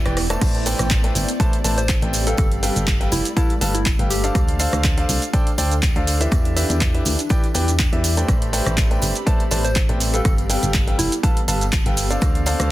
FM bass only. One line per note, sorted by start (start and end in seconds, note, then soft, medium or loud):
0.06 0.37 E1 medium
0.41 0.74 A1 loud
0.79 1.11 A1 loud
1.15 1.25 G1 loud
1.65 1.97 A1 medium
2.02 2.34 A1 medium
2.38 2.71 G1 loud
2.76 3.07 G1 loud
3.12 3.22 F1 loud
3.61 3.94 G1 medium
3.99 4.30 G1 medium
4.35 4.67 D2 loud
4.73 5.04 D2 loud
5.09 5.19 C2 loud
5.58 5.90 D2 medium
5.96 6.27 D2 medium
6.32 6.64 E2 loud
6.70 7.01 E2 loud
7.06 7.15 D2 loud
7.55 7.87 E2 medium
7.93 8.24 E2 medium
8.28 8.61 A1 loud
8.66 8.97 A1 loud
9.02 9.12 G1 loud
9.51 9.84 A1 medium
9.89 10.20 A1 medium
10.25 10.57 G1 loud
10.63 10.94 G1 loud
10.99 11.09 F1 loud
11.48 11.80 G1 medium
11.86 12.17 G1 medium
12.22 12.54 D2 loud
12.60 12.71 D2 loud